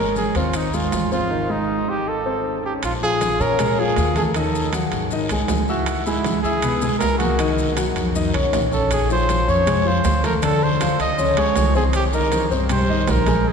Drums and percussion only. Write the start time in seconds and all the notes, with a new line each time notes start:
0.16 high conga, short guiro, maracas
0.35 high conga, high timbale, short guiro, maracas
0.53 high conga, high timbale, long guiro, maracas
0.74 high conga, maracas
0.92 high conga, high timbale, low timbale, short guiro, maracas
1.12 short guiro, maracas
2.83 high conga, high timbale, long guiro, maracas
3.02 high conga
3.21 high conga, high timbale, low timbale, short guiro, maracas
3.40 high conga, short guiro, maracas
3.59 high conga, low conga, high timbale, long guiro, maracas
3.78 high conga
3.96 high conga, high timbale, low timbale, short guiro, maracas
4.16 high conga, high timbale, short guiro, maracas
4.34 high conga, high timbale, long guiro, maracas
4.54 high conga, maracas
4.73 high conga, high timbale, low timbale, short guiro, maracas
4.92 high conga, high timbale, short guiro, maracas
5.11 high conga, long guiro, maracas
5.29 high conga, high timbale, maracas
5.48 high conga, high timbale, low timbale, short guiro, maracas
5.68 high conga, short guiro, maracas
5.86 high conga, high timbale, long guiro, maracas
6.06 high conga, maracas
6.24 high conga, high timbale, low timbale, short guiro, maracas
6.44 high conga, short guiro, maracas
6.62 high conga, low conga, high timbale, long guiro, maracas
6.82 high conga, low conga, maracas
7.01 high conga, high timbale, low timbale, short guiro, maracas
7.20 high conga, high timbale, short guiro, maracas
7.39 high conga, high timbale, long guiro, maracas
7.58 high conga, maracas
7.77 high conga, high timbale, low timbale, short guiro, maracas
7.96 high conga, high timbale, short guiro, maracas
8.15 high conga, long guiro, maracas
8.34 high conga, high timbale
8.53 high conga, high timbale, low timbale, short guiro, maracas
8.72 high conga, short guiro, maracas
8.91 high conga, high timbale, maracas
9.10 high conga, maracas
9.29 high conga, high timbale, low timbale, short guiro, maracas
9.48 high conga, short guiro, maracas
9.67 high conga, low conga, high timbale, long guiro, maracas
9.87 high conga
10.04 high conga, high timbale, low timbale, short guiro, maracas
10.24 high conga, high timbale, short guiro, maracas
10.42 high conga, high timbale, long guiro, maracas
10.62 high conga
10.81 high conga, high timbale, low timbale, short guiro, maracas
10.99 high conga, high timbale, short guiro, maracas
11.19 high conga, long guiro, maracas
11.37 high timbale
11.56 high conga, high timbale, low timbale, short guiro, maracas
11.75 high conga, short guiro, maracas
11.93 high conga, high timbale, long guiro, maracas
12.13 high conga, maracas
12.32 high conga, high timbale, low timbale, short guiro, maracas
12.51 high conga, short guiro, maracas
12.69 high conga, low conga, high timbale, long guiro, maracas
12.90 high conga
13.07 high conga, high timbale, low timbale, short guiro, maracas
13.26 high conga, high timbale, short guiro, maracas